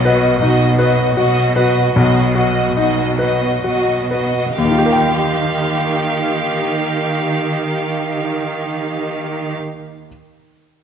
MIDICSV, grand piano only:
0, 0, Header, 1, 2, 480
1, 0, Start_track
1, 0, Tempo, 746269
1, 753, Tempo, 795756
1, 1224, Time_signature, 3, 2, 24, 8
1, 1713, Tempo, 875912
1, 2193, Tempo, 917431
1, 5958, End_track
2, 0, Start_track
2, 0, Title_t, "Grand piano"
2, 0, Program_c, 0, 0
2, 0, Control_c, 0, 64, 127
2, 0, Note_on_c, 0, 35, 46
2, 33, Note_on_c, 0, 71, 39
2, 268, Note_on_c, 0, 63, 30
2, 412, Note_off_c, 0, 71, 0
2, 507, Note_on_c, 0, 71, 36
2, 655, Note_off_c, 0, 63, 0
2, 753, Note_on_c, 0, 66, 32
2, 893, Note_off_c, 0, 71, 0
2, 989, Note_on_c, 0, 71, 37
2, 1129, Note_off_c, 0, 66, 0
2, 1200, Note_off_c, 0, 35, 0
2, 1230, Note_on_c, 0, 35, 45
2, 1237, Control_c, 0, 64, 0
2, 1332, Control_c, 0, 64, 127
2, 1368, Note_off_c, 0, 71, 0
2, 1466, Note_on_c, 0, 66, 35
2, 1716, Note_on_c, 0, 63, 31
2, 1853, Note_off_c, 0, 66, 0
2, 1945, Note_on_c, 0, 71, 29
2, 2095, Note_off_c, 0, 63, 0
2, 2195, Note_on_c, 0, 66, 25
2, 2336, Note_off_c, 0, 71, 0
2, 2439, Note_on_c, 0, 71, 24
2, 2586, Note_off_c, 0, 66, 0
2, 2663, Note_off_c, 0, 35, 0
2, 2682, Note_off_c, 0, 71, 0
2, 2685, Note_on_c, 0, 39, 28
2, 2693, Control_c, 0, 64, 0
2, 2720, Note_on_c, 0, 51, 27
2, 2757, Note_on_c, 0, 65, 27
2, 2793, Note_on_c, 0, 67, 27
2, 2795, Control_c, 0, 64, 127
2, 2831, Note_on_c, 0, 70, 29
2, 2867, Note_on_c, 0, 79, 29
2, 5280, Note_off_c, 0, 39, 0
2, 5315, Note_off_c, 0, 51, 0
2, 5351, Note_off_c, 0, 65, 0
2, 5387, Note_off_c, 0, 67, 0
2, 5426, Note_off_c, 0, 70, 0
2, 5462, Note_off_c, 0, 79, 0
2, 5565, Control_c, 0, 64, 0
2, 5958, End_track
0, 0, End_of_file